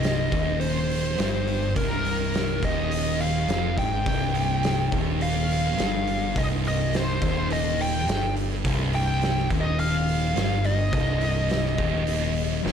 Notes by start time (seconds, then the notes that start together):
Already playing: C1 C2 D#5
0.03 snare, open hi-hat
0.32 D#1 D#2, kick, open hi-hat
0.60 C5, open hi-hat
0.90 open hi-hat
1.18 G1 G2, snare, open hi-hat
1.47 open hi-hat
1.76 C1 C2 A#4, kick, open hi-hat
2.05 open hi-hat
2.34 snare, open hi-hat
2.62 D#1 D#2 D#5, kick, open hi-hat
2.91 open hi-hat
3.20 F5, open hi-hat
3.48 F1 F2, snare, open hi-hat
3.77 G#1 G#2 G5, kick, open hi-hat
4.06 C1 C2, kick, open hi-hat
4.35 open hi-hat
4.63 snare, open hi-hat
4.92 D#1 D#2, kick, open hi-hat
5.21 F5, open hi-hat
5.49 open hi-hat
5.78 G1 G2, snare, open hi-hat
6.07 open hi-hat
6.36 C1 C2 D#5, kick, open hi-hat
6.65 D#5, open hi-hat
6.93 C5, snare, open hi-hat
7.10 snare
7.22 D#1 D#2, kick, open hi-hat
7.50 D#5, open hi-hat
7.79 G5, open hi-hat
8.07 G1 G2, snare, open hi-hat
8.37 open hi-hat
8.64 C1 C2, kick, open hi-hat
8.93 G5, open hi-hat
9.22 snare, open hi-hat
9.39 snare
9.50 D#1 D#2, kick, open hi-hat
9.61 D#5
9.79 F5, open hi-hat
10.07 open hi-hat
10.36 G1 G2, snare, open hi-hat
10.64 D#5, open hi-hat
10.92 C1 C2, kick, open hi-hat
11.21 open hi-hat
11.49 snare, open hi-hat
11.65 snare
11.78 D#1 D#2, kick, open hi-hat
12.07 open hi-hat
12.35 open hi-hat
12.63 F1 F2, snare